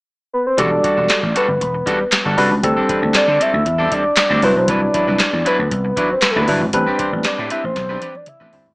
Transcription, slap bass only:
0.58 0.78 E1 loud
0.97 1.07 E1 medium
1.23 1.32 A1 medium
1.48 1.58 G1 medium
1.61 1.81 E1 medium
2.25 2.35 G1 medium
2.37 2.48 C2 medium
2.51 2.60 C#2 medium
2.63 2.74 D2 loud
3.02 3.12 D2 medium
3.14 muted slap bass stroke soft
3.28 3.37 D3 loud
3.54 3.63 D2 medium
3.66 3.86 E2 loud
4.30 4.40 D2 medium
4.43 4.53 C2 medium
4.56 4.66 B1 medium
4.68 4.88 C2 loud
5.08 5.17 C2 medium
5.33 5.42 E2 medium
5.59 5.68 D2 medium
5.71 5.91 C2 medium
6.36 6.45 D2 medium
6.48 6.58 G1 medium
6.61 6.70 G#1 medium
6.74 6.84 A1 loud
7.13 7.22 A1 medium
7.25 muted slap bass stroke soft
7.39 7.48 A2 medium
7.64 7.73 A1 medium
7.76 7.96 B1 medium
8.40 8.50 A1 medium
8.53 8.63 G1 medium
8.67 8.75 G#1 medium

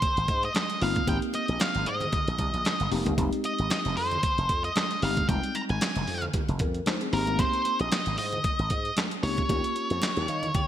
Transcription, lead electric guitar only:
0.00 0.44 C5 medium
0.45 0.83 D#5 medium
0.82 1.08 F5 medium
1.09 1.16 G5 medium
1.35 1.62 D#5 medium
1.61 1.88 F5 loud
1.87 2.88 D#5 medium
3.46 3.70 D#5 medium
3.71 3.97 D#5 medium
3.97 4.64 C5 medium
4.65 5.03 D#5 medium
5.03 5.29 F5 loud
5.29 5.56 G5 loud
5.55 5.60 A#5 loud
5.70 6.22 G#5 medium
7.13 7.40 A#4 medium
7.39 7.80 C5 medium
7.81 8.17 D#5 loud
8.18 8.93 D#5 medium
9.23 10.68 C#5 loud

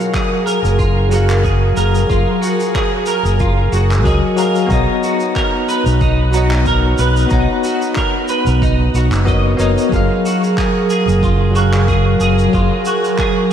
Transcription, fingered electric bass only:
0.65 1.70 F#1 medium
1.77 2.01 F#1 medium
2.10 2.22 F#1 medium
3.25 3.66 F#1 medium
3.73 4.05 F#1 medium
4.05 4.18 C#2 loud
4.71 4.83 B1 medium
5.86 6.92 B1 medium
6.99 7.23 B1 medium
7.31 7.44 B1 medium
8.47 8.87 B1 medium
8.94 9.07 B1 medium
9.12 9.52 F#1 medium
9.59 9.72 F#1 medium
9.93 10.05 F#1 medium
11.08 12.14 F#1 medium
12.20 12.44 F#1 medium
12.54 12.66 F#1 medium

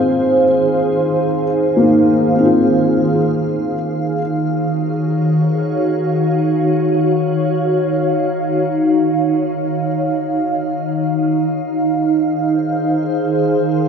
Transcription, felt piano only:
0.00 0.44 G#3 medium
0.00 1.41 A#3 soft
0.00 2.33 C4 medium
0.00 1.44 D#4 medium
0.00 1.46 F4 medium
1.77 4.15 A#3 medium
1.81 2.39 D#4 soft
2.35 4.15 C4 medium
2.40 4.17 D#4 medium
2.45 4.20 F4 soft

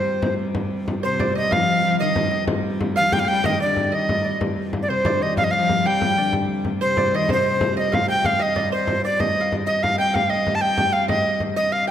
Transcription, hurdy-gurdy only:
0.00 0.53 C3 medium
0.00 0.54 G3 medium
0.53 4.41 C3 medium
0.53 4.40 G3 medium
4.40 8.25 C3 medium
4.40 8.25 G3 medium
8.25 11.91 C3 medium
8.25 11.91 G3 medium

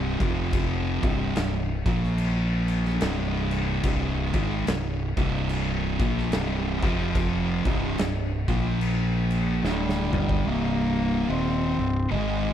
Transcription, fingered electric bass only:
0.00 0.17 C1 medium
0.20 0.99 F1 loud
1.03 1.34 C1 loud
1.36 1.83 C1 medium
1.85 2.97 A#1 loud
3.02 3.81 C1 loud
3.84 4.31 C1 loud
4.34 4.65 G#1 medium
4.67 5.14 C1 medium
5.17 5.96 C1 loud
5.99 6.30 A#1 loud
6.33 6.80 C1 medium
6.82 7.61 F1 loud
7.65 7.96 C1 loud
7.99 8.45 C1 medium
8.48 9.59 A#1 medium
9.64 10.10 D1 loud
10.13 10.44 G1 medium
10.47 11.25 C1 loud
11.29 11.75 D#1 medium
11.79 12.09 C1 medium
12.11 12.53 G#1 loud

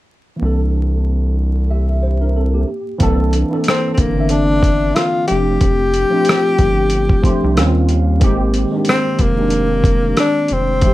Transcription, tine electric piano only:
0.36 2.62 E3 medium
0.36 1.67 A#3 medium
0.41 1.68 C4 medium
0.41 1.69 D4 soft
0.45 1.70 A4 medium
1.70 2.01 G4 soft
1.70 2.01 E5 medium
2.03 2.20 E4 soft
2.03 2.19 C5 medium
2.21 2.35 D4 soft
2.21 2.35 A#4 medium
2.36 2.53 C4 soft
2.36 2.52 A4 medium
2.54 2.85 A#3 soft
2.54 2.84 G4 medium
2.98 3.46 E3 loud
2.98 3.47 A#3 loud
2.98 3.47 C4 medium
2.98 3.48 D4 loud
3.03 3.48 A4 loud
3.49 4.11 E3 medium
3.49 4.11 A#3 medium
3.49 4.12 C4 medium
3.49 4.12 D4 medium
3.54 4.13 A4 medium
4.15 5.28 D3 medium
4.15 5.29 A#3 medium
4.15 5.28 C4 medium
4.15 5.30 D4 medium
4.20 5.31 E5 medium
5.27 6.05 F3 medium
5.27 6.06 A3 medium
5.27 6.06 C4 medium
5.31 6.07 D4 medium
5.31 6.07 G4 medium
6.10 7.17 F3 medium
6.10 7.17 A3 medium
6.10 7.18 C4 medium
6.10 7.18 D4 medium
6.14 7.19 F4 medium
7.22 7.56 F3 medium
7.22 7.56 A3 medium
7.22 7.56 C4 medium
7.22 7.57 D4 medium
7.22 7.55 C6 medium
7.27 7.58 G4 medium
7.55 8.17 D#3 medium
7.55 8.18 G3 medium
7.55 8.18 C4 medium
7.55 8.19 C#4 medium
7.55 7.87 F5 medium
7.59 8.19 F4 medium
7.90 8.20 F5 medium
8.19 8.67 D#3 loud
8.19 8.68 G#3 medium
8.19 8.69 A#3 loud
8.23 8.69 C4 medium
8.23 8.70 G4 loud
8.71 9.32 D#3 medium
8.71 9.33 G#3 medium
8.71 9.33 A#3 medium
8.71 9.34 C4 medium
8.76 9.34 D4 medium
9.36 10.58 D#3 medium
9.36 10.59 G#3 medium
9.36 10.59 A#3 medium
9.36 10.60 C4 medium
9.41 10.60 D4 medium
10.81 10.94 F3 medium
10.81 10.94 A3 medium
10.81 10.94 A#3 medium
10.81 10.94 C4 medium
10.86 10.94 G4 loud

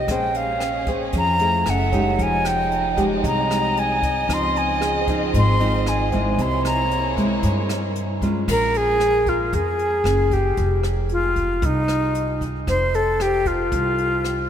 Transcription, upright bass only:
0.08 1.10 A#1 loud
1.14 1.63 F2 medium
1.66 2.19 F#1 loud
2.19 3.20 F1 loud
3.24 4.29 C2 medium
4.29 5.30 C#2 loud
5.34 6.38 G#1 loud
6.38 7.39 C2 loud
7.43 8.44 G2 medium
8.48 9.49 A#1 medium
9.53 10.02 F2 loud
10.04 10.53 F#1 medium
10.57 11.59 F1 medium
11.62 12.63 C2 loud
12.68 13.68 F1 medium
13.72 14.49 C2 loud

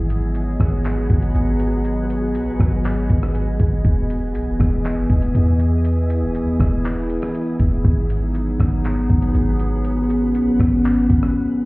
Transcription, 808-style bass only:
0.00 0.57 G#1 loud
0.60 1.08 G#1 loud
1.10 1.34 G#1 loud
1.35 2.36 G#1 loud
2.35 2.49 B1 loud
2.47 2.59 G#1 loud
2.60 3.08 G#1 loud
3.10 3.58 G#1 loud
3.60 3.84 G#1 loud
3.85 4.36 E1 loud
4.35 4.49 B1 loud
4.47 4.59 E1 loud
4.60 4.99 E1 loud
4.97 5.09 G#1 loud
5.10 5.34 E1 loud
5.35 6.24 E2 loud
6.22 6.42 D#1 loud
6.41 6.59 E2 loud
6.60 7.20 E1 loud
7.60 7.84 E1 loud
7.85 8.57 G#1 loud
8.60 9.08 G#1 loud
9.10 9.34 G#1 loud
9.35 10.36 G#1 loud
10.35 10.49 B1 medium
10.47 10.59 G#1 loud
10.60 11.08 G#1 loud
11.10 11.34 G#1 loud

